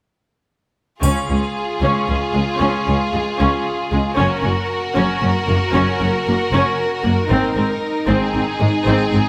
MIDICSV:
0, 0, Header, 1, 7, 480
1, 0, Start_track
1, 0, Tempo, 524017
1, 941, Time_signature, 12, 3, 24, 8
1, 8507, End_track
2, 0, Start_track
2, 0, Title_t, "Violin section"
2, 0, Program_c, 0, 48
2, 936, Note_on_c, 0, 68, 36
2, 3790, Note_off_c, 0, 68, 0
2, 3814, Note_on_c, 0, 70, 43
2, 7401, Note_off_c, 0, 70, 0
2, 7407, Note_on_c, 0, 68, 47
2, 8507, Note_off_c, 0, 68, 0
2, 8507, End_track
3, 0, Start_track
3, 0, Title_t, "Violin section"
3, 0, Program_c, 1, 48
3, 937, Note_on_c, 1, 65, 35
3, 3790, Note_off_c, 1, 65, 0
3, 3832, Note_on_c, 1, 66, 42
3, 6659, Note_off_c, 1, 66, 0
3, 6695, Note_on_c, 1, 63, 44
3, 8507, Note_off_c, 1, 63, 0
3, 8507, End_track
4, 0, Start_track
4, 0, Title_t, "Viola section"
4, 0, Program_c, 2, 48
4, 930, Note_on_c, 2, 61, 39
4, 1159, Note_off_c, 2, 61, 0
4, 1187, Note_on_c, 2, 61, 26
4, 1260, Note_off_c, 2, 61, 0
4, 1666, Note_on_c, 2, 61, 45
4, 1890, Note_off_c, 2, 61, 0
4, 1902, Note_on_c, 2, 61, 30
4, 1975, Note_off_c, 2, 61, 0
4, 2136, Note_on_c, 2, 56, 33
4, 2209, Note_off_c, 2, 56, 0
4, 2381, Note_on_c, 2, 61, 48
4, 2607, Note_off_c, 2, 61, 0
4, 2626, Note_on_c, 2, 61, 33
4, 2699, Note_off_c, 2, 61, 0
4, 2863, Note_on_c, 2, 56, 34
4, 2937, Note_off_c, 2, 56, 0
4, 3102, Note_on_c, 2, 61, 40
4, 3328, Note_off_c, 2, 61, 0
4, 3585, Note_on_c, 2, 56, 37
4, 3658, Note_off_c, 2, 56, 0
4, 3814, Note_on_c, 2, 61, 54
4, 4038, Note_off_c, 2, 61, 0
4, 4049, Note_on_c, 2, 61, 31
4, 4122, Note_off_c, 2, 61, 0
4, 4531, Note_on_c, 2, 61, 48
4, 4761, Note_off_c, 2, 61, 0
4, 4771, Note_on_c, 2, 61, 37
4, 4844, Note_off_c, 2, 61, 0
4, 5013, Note_on_c, 2, 58, 36
4, 5087, Note_off_c, 2, 58, 0
4, 5253, Note_on_c, 2, 61, 52
4, 5480, Note_off_c, 2, 61, 0
4, 5492, Note_on_c, 2, 61, 36
4, 5565, Note_off_c, 2, 61, 0
4, 5742, Note_on_c, 2, 58, 41
4, 5815, Note_off_c, 2, 58, 0
4, 5981, Note_on_c, 2, 61, 54
4, 6203, Note_off_c, 2, 61, 0
4, 6450, Note_on_c, 2, 58, 45
4, 6523, Note_off_c, 2, 58, 0
4, 6688, Note_on_c, 2, 60, 52
4, 6912, Note_off_c, 2, 60, 0
4, 6933, Note_on_c, 2, 60, 35
4, 7006, Note_off_c, 2, 60, 0
4, 7398, Note_on_c, 2, 60, 50
4, 7626, Note_off_c, 2, 60, 0
4, 7640, Note_on_c, 2, 60, 39
4, 7713, Note_off_c, 2, 60, 0
4, 7877, Note_on_c, 2, 56, 38
4, 7950, Note_off_c, 2, 56, 0
4, 8125, Note_on_c, 2, 60, 50
4, 8350, Note_off_c, 2, 60, 0
4, 8363, Note_on_c, 2, 60, 38
4, 8436, Note_off_c, 2, 60, 0
4, 8507, End_track
5, 0, Start_track
5, 0, Title_t, "Cello section"
5, 0, Program_c, 3, 48
5, 946, Note_on_c, 3, 37, 43
5, 1019, Note_off_c, 3, 37, 0
5, 1193, Note_on_c, 3, 37, 28
5, 1267, Note_off_c, 3, 37, 0
5, 1671, Note_on_c, 3, 37, 46
5, 1744, Note_off_c, 3, 37, 0
5, 1917, Note_on_c, 3, 37, 31
5, 1990, Note_off_c, 3, 37, 0
5, 2158, Note_on_c, 3, 37, 29
5, 2231, Note_off_c, 3, 37, 0
5, 2393, Note_on_c, 3, 37, 47
5, 2466, Note_off_c, 3, 37, 0
5, 2639, Note_on_c, 3, 37, 33
5, 2712, Note_off_c, 3, 37, 0
5, 2876, Note_on_c, 3, 37, 29
5, 2950, Note_off_c, 3, 37, 0
5, 3121, Note_on_c, 3, 37, 50
5, 3194, Note_off_c, 3, 37, 0
5, 3592, Note_on_c, 3, 37, 32
5, 3666, Note_off_c, 3, 37, 0
5, 3840, Note_on_c, 3, 42, 51
5, 3913, Note_off_c, 3, 42, 0
5, 4072, Note_on_c, 3, 42, 33
5, 4146, Note_off_c, 3, 42, 0
5, 4548, Note_on_c, 3, 42, 57
5, 4621, Note_off_c, 3, 42, 0
5, 4790, Note_on_c, 3, 42, 37
5, 4863, Note_off_c, 3, 42, 0
5, 5023, Note_on_c, 3, 42, 37
5, 5096, Note_off_c, 3, 42, 0
5, 5267, Note_on_c, 3, 42, 53
5, 5340, Note_off_c, 3, 42, 0
5, 5509, Note_on_c, 3, 42, 37
5, 5583, Note_off_c, 3, 42, 0
5, 5747, Note_on_c, 3, 42, 37
5, 5821, Note_off_c, 3, 42, 0
5, 5986, Note_on_c, 3, 42, 58
5, 6059, Note_off_c, 3, 42, 0
5, 6459, Note_on_c, 3, 42, 36
5, 6533, Note_off_c, 3, 42, 0
5, 6693, Note_on_c, 3, 44, 58
5, 6767, Note_off_c, 3, 44, 0
5, 6930, Note_on_c, 3, 44, 37
5, 7004, Note_off_c, 3, 44, 0
5, 7399, Note_on_c, 3, 44, 61
5, 7472, Note_off_c, 3, 44, 0
5, 7640, Note_on_c, 3, 44, 39
5, 7714, Note_off_c, 3, 44, 0
5, 7886, Note_on_c, 3, 44, 41
5, 7959, Note_off_c, 3, 44, 0
5, 8132, Note_on_c, 3, 44, 58
5, 8205, Note_off_c, 3, 44, 0
5, 8374, Note_on_c, 3, 44, 36
5, 8447, Note_off_c, 3, 44, 0
5, 8507, End_track
6, 0, Start_track
6, 0, Title_t, "Double bass section"
6, 0, Program_c, 4, 48
6, 942, Note_on_c, 4, 37, 41
6, 1015, Note_off_c, 4, 37, 0
6, 1189, Note_on_c, 4, 37, 31
6, 1262, Note_off_c, 4, 37, 0
6, 1663, Note_on_c, 4, 37, 42
6, 1736, Note_off_c, 4, 37, 0
6, 1912, Note_on_c, 4, 37, 31
6, 1985, Note_off_c, 4, 37, 0
6, 2151, Note_on_c, 4, 37, 33
6, 2225, Note_off_c, 4, 37, 0
6, 2392, Note_on_c, 4, 37, 44
6, 2466, Note_off_c, 4, 37, 0
6, 2636, Note_on_c, 4, 37, 32
6, 2710, Note_off_c, 4, 37, 0
6, 2872, Note_on_c, 4, 37, 31
6, 2946, Note_off_c, 4, 37, 0
6, 3117, Note_on_c, 4, 37, 44
6, 3190, Note_off_c, 4, 37, 0
6, 3593, Note_on_c, 4, 37, 36
6, 3666, Note_off_c, 4, 37, 0
6, 3833, Note_on_c, 4, 30, 54
6, 3906, Note_off_c, 4, 30, 0
6, 4068, Note_on_c, 4, 30, 36
6, 4141, Note_off_c, 4, 30, 0
6, 4546, Note_on_c, 4, 30, 47
6, 4619, Note_off_c, 4, 30, 0
6, 4786, Note_on_c, 4, 30, 39
6, 4859, Note_off_c, 4, 30, 0
6, 5021, Note_on_c, 4, 30, 40
6, 5095, Note_off_c, 4, 30, 0
6, 5262, Note_on_c, 4, 30, 53
6, 5335, Note_off_c, 4, 30, 0
6, 5502, Note_on_c, 4, 30, 41
6, 5576, Note_off_c, 4, 30, 0
6, 5744, Note_on_c, 4, 30, 39
6, 5818, Note_off_c, 4, 30, 0
6, 5978, Note_on_c, 4, 30, 58
6, 6051, Note_off_c, 4, 30, 0
6, 6456, Note_on_c, 4, 30, 41
6, 6530, Note_off_c, 4, 30, 0
6, 6690, Note_on_c, 4, 32, 56
6, 6764, Note_off_c, 4, 32, 0
6, 6929, Note_on_c, 4, 32, 41
6, 7003, Note_off_c, 4, 32, 0
6, 7406, Note_on_c, 4, 32, 54
6, 7479, Note_off_c, 4, 32, 0
6, 7650, Note_on_c, 4, 32, 38
6, 7724, Note_off_c, 4, 32, 0
6, 7882, Note_on_c, 4, 32, 40
6, 7955, Note_off_c, 4, 32, 0
6, 8122, Note_on_c, 4, 32, 56
6, 8195, Note_off_c, 4, 32, 0
6, 8365, Note_on_c, 4, 32, 45
6, 8438, Note_off_c, 4, 32, 0
6, 8507, End_track
7, 0, Start_track
7, 0, Title_t, "Drums"
7, 944, Note_on_c, 9, 81, 26
7, 1036, Note_off_c, 9, 81, 0
7, 8507, End_track
0, 0, End_of_file